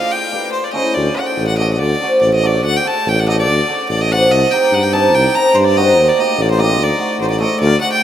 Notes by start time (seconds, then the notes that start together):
Already playing: F5
0.11 G5
0.32 D4 G4 B4
0.53 C5
0.64 D5
0.73 C#4 E4 A4 D#5
0.94 D2 D5
1.15 D4 F#4 A4 F#5
1.26 G5
1.38 A1
1.48 F#5
1.58 D4 F#4 A4 D#5
1.73 D#5
1.79 D2 D5
2.02 D4 F#4 C5
2.22 A1 D5
2.34 D#5
2.43 D4 F#4 A4 D5
2.64 D2 F#5
2.77 G5
2.85 D4 F#4 A4 A5
3.06 A1 G5
3.20 F#5
3.28 D4 F#4 A4 D#5
3.39 D5
3.48 D2
3.68 D4 F#4 A4
3.89 A1 D5
4.01 D#5
4.11 D4 F#4 C5 F#5
4.30 C2 D#5
4.51 C4 D#4 G4 G5
4.71 G2 F#5
4.83 G5
4.93 C4 D#4 G4 A5
5.14 C2 G5
5.35 C4 D#4 A#4 A#5
5.55 G2 C5
5.64 D5
5.76 C4 D#4 F#4 D#5
5.97 D#2
6.09 D5
6.18 A#3 D#4 G4 D#5
6.38 A1 D5
6.51 C5
6.58 A#3 D#4 G4 D#5
6.79 D2
6.84 D5
6.98 A3 D4 F#4
7.19 A1 C5
7.30 D5
7.40 A3 D4 A4 D#5
7.60 D2 D5
7.81 A3 D4 F#4 F#5
7.93 G5